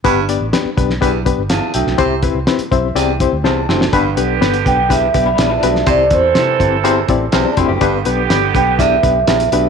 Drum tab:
HH |x-x-x-x-x-x-x-x-|x-x-xxx-x-x-----|x-x-xxx-x-x-x-x-|x-x-x-x-x-x-x-x-|
SD |----o--o----o--o|----o-------o-oo|----o-------o--o|----o-------o---|
BD |o-----o-o-o-----|o-o---o---o-----|o-----o-o-o-----|o-o---o---o---o-|

HH |x-x-x-x-x-x-xxx-|
SD |----o-------o---|
BD |o-----o-o-o-----|